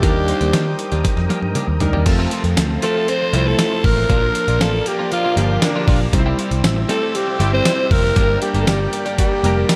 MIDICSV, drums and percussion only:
0, 0, Header, 1, 2, 480
1, 0, Start_track
1, 0, Key_signature, -1, "major"
1, 0, Tempo, 508475
1, 28, Time_signature, 4, 2, 24, 8
1, 9211, End_track
2, 0, Start_track
2, 0, Title_t, "Drums"
2, 28, Note_on_c, 9, 42, 75
2, 29, Note_on_c, 9, 36, 104
2, 122, Note_off_c, 9, 42, 0
2, 123, Note_off_c, 9, 36, 0
2, 265, Note_on_c, 9, 42, 67
2, 359, Note_off_c, 9, 42, 0
2, 385, Note_on_c, 9, 42, 49
2, 479, Note_off_c, 9, 42, 0
2, 504, Note_on_c, 9, 38, 101
2, 506, Note_on_c, 9, 42, 88
2, 598, Note_off_c, 9, 38, 0
2, 600, Note_off_c, 9, 42, 0
2, 744, Note_on_c, 9, 42, 67
2, 838, Note_off_c, 9, 42, 0
2, 865, Note_on_c, 9, 42, 43
2, 959, Note_off_c, 9, 42, 0
2, 986, Note_on_c, 9, 38, 48
2, 988, Note_on_c, 9, 42, 86
2, 989, Note_on_c, 9, 36, 86
2, 1081, Note_off_c, 9, 38, 0
2, 1083, Note_off_c, 9, 42, 0
2, 1084, Note_off_c, 9, 36, 0
2, 1106, Note_on_c, 9, 38, 46
2, 1200, Note_off_c, 9, 38, 0
2, 1228, Note_on_c, 9, 42, 63
2, 1228, Note_on_c, 9, 48, 60
2, 1322, Note_off_c, 9, 48, 0
2, 1323, Note_off_c, 9, 42, 0
2, 1345, Note_on_c, 9, 48, 56
2, 1439, Note_off_c, 9, 48, 0
2, 1464, Note_on_c, 9, 42, 80
2, 1465, Note_on_c, 9, 47, 73
2, 1559, Note_off_c, 9, 42, 0
2, 1559, Note_off_c, 9, 47, 0
2, 1703, Note_on_c, 9, 42, 56
2, 1703, Note_on_c, 9, 43, 88
2, 1797, Note_off_c, 9, 42, 0
2, 1797, Note_off_c, 9, 43, 0
2, 1824, Note_on_c, 9, 43, 81
2, 1918, Note_off_c, 9, 43, 0
2, 1943, Note_on_c, 9, 42, 80
2, 1943, Note_on_c, 9, 49, 92
2, 1947, Note_on_c, 9, 36, 113
2, 2038, Note_off_c, 9, 42, 0
2, 2038, Note_off_c, 9, 49, 0
2, 2042, Note_off_c, 9, 36, 0
2, 2183, Note_on_c, 9, 42, 75
2, 2278, Note_off_c, 9, 42, 0
2, 2304, Note_on_c, 9, 42, 49
2, 2398, Note_off_c, 9, 42, 0
2, 2426, Note_on_c, 9, 54, 73
2, 2427, Note_on_c, 9, 38, 103
2, 2429, Note_on_c, 9, 42, 96
2, 2520, Note_off_c, 9, 54, 0
2, 2521, Note_off_c, 9, 38, 0
2, 2523, Note_off_c, 9, 42, 0
2, 2665, Note_on_c, 9, 42, 75
2, 2759, Note_off_c, 9, 42, 0
2, 2909, Note_on_c, 9, 42, 95
2, 3004, Note_off_c, 9, 42, 0
2, 3148, Note_on_c, 9, 42, 73
2, 3243, Note_off_c, 9, 42, 0
2, 3385, Note_on_c, 9, 54, 65
2, 3386, Note_on_c, 9, 38, 108
2, 3386, Note_on_c, 9, 42, 89
2, 3479, Note_off_c, 9, 54, 0
2, 3481, Note_off_c, 9, 38, 0
2, 3481, Note_off_c, 9, 42, 0
2, 3627, Note_on_c, 9, 36, 96
2, 3627, Note_on_c, 9, 46, 59
2, 3721, Note_off_c, 9, 46, 0
2, 3722, Note_off_c, 9, 36, 0
2, 3867, Note_on_c, 9, 42, 85
2, 3868, Note_on_c, 9, 36, 107
2, 3961, Note_off_c, 9, 42, 0
2, 3962, Note_off_c, 9, 36, 0
2, 4107, Note_on_c, 9, 42, 79
2, 4201, Note_off_c, 9, 42, 0
2, 4229, Note_on_c, 9, 42, 51
2, 4323, Note_off_c, 9, 42, 0
2, 4350, Note_on_c, 9, 38, 107
2, 4350, Note_on_c, 9, 54, 72
2, 4352, Note_on_c, 9, 42, 94
2, 4444, Note_off_c, 9, 54, 0
2, 4445, Note_off_c, 9, 38, 0
2, 4447, Note_off_c, 9, 42, 0
2, 4588, Note_on_c, 9, 42, 73
2, 4682, Note_off_c, 9, 42, 0
2, 4830, Note_on_c, 9, 42, 88
2, 4924, Note_off_c, 9, 42, 0
2, 5070, Note_on_c, 9, 42, 77
2, 5164, Note_off_c, 9, 42, 0
2, 5305, Note_on_c, 9, 54, 69
2, 5306, Note_on_c, 9, 38, 117
2, 5306, Note_on_c, 9, 42, 88
2, 5399, Note_off_c, 9, 54, 0
2, 5400, Note_off_c, 9, 38, 0
2, 5400, Note_off_c, 9, 42, 0
2, 5547, Note_on_c, 9, 46, 58
2, 5548, Note_on_c, 9, 36, 93
2, 5641, Note_off_c, 9, 46, 0
2, 5642, Note_off_c, 9, 36, 0
2, 5789, Note_on_c, 9, 36, 113
2, 5789, Note_on_c, 9, 42, 87
2, 5883, Note_off_c, 9, 42, 0
2, 5884, Note_off_c, 9, 36, 0
2, 6029, Note_on_c, 9, 42, 73
2, 6123, Note_off_c, 9, 42, 0
2, 6149, Note_on_c, 9, 42, 53
2, 6243, Note_off_c, 9, 42, 0
2, 6268, Note_on_c, 9, 54, 73
2, 6269, Note_on_c, 9, 38, 115
2, 6270, Note_on_c, 9, 42, 97
2, 6362, Note_off_c, 9, 54, 0
2, 6363, Note_off_c, 9, 38, 0
2, 6365, Note_off_c, 9, 42, 0
2, 6506, Note_on_c, 9, 42, 73
2, 6601, Note_off_c, 9, 42, 0
2, 6749, Note_on_c, 9, 42, 85
2, 6843, Note_off_c, 9, 42, 0
2, 6986, Note_on_c, 9, 42, 71
2, 7081, Note_off_c, 9, 42, 0
2, 7225, Note_on_c, 9, 54, 68
2, 7226, Note_on_c, 9, 38, 108
2, 7226, Note_on_c, 9, 42, 87
2, 7319, Note_off_c, 9, 54, 0
2, 7320, Note_off_c, 9, 38, 0
2, 7320, Note_off_c, 9, 42, 0
2, 7467, Note_on_c, 9, 36, 93
2, 7468, Note_on_c, 9, 46, 62
2, 7561, Note_off_c, 9, 36, 0
2, 7562, Note_off_c, 9, 46, 0
2, 7704, Note_on_c, 9, 42, 84
2, 7707, Note_on_c, 9, 36, 113
2, 7799, Note_off_c, 9, 42, 0
2, 7802, Note_off_c, 9, 36, 0
2, 7945, Note_on_c, 9, 42, 72
2, 8040, Note_off_c, 9, 42, 0
2, 8066, Note_on_c, 9, 42, 53
2, 8160, Note_off_c, 9, 42, 0
2, 8186, Note_on_c, 9, 54, 71
2, 8187, Note_on_c, 9, 38, 112
2, 8189, Note_on_c, 9, 42, 100
2, 8281, Note_off_c, 9, 38, 0
2, 8281, Note_off_c, 9, 54, 0
2, 8283, Note_off_c, 9, 42, 0
2, 8428, Note_on_c, 9, 42, 77
2, 8523, Note_off_c, 9, 42, 0
2, 8550, Note_on_c, 9, 42, 46
2, 8644, Note_off_c, 9, 42, 0
2, 8671, Note_on_c, 9, 36, 92
2, 8671, Note_on_c, 9, 42, 92
2, 8765, Note_off_c, 9, 36, 0
2, 8765, Note_off_c, 9, 42, 0
2, 8912, Note_on_c, 9, 42, 70
2, 9006, Note_off_c, 9, 42, 0
2, 9148, Note_on_c, 9, 54, 69
2, 9149, Note_on_c, 9, 38, 109
2, 9149, Note_on_c, 9, 42, 90
2, 9211, Note_off_c, 9, 38, 0
2, 9211, Note_off_c, 9, 42, 0
2, 9211, Note_off_c, 9, 54, 0
2, 9211, End_track
0, 0, End_of_file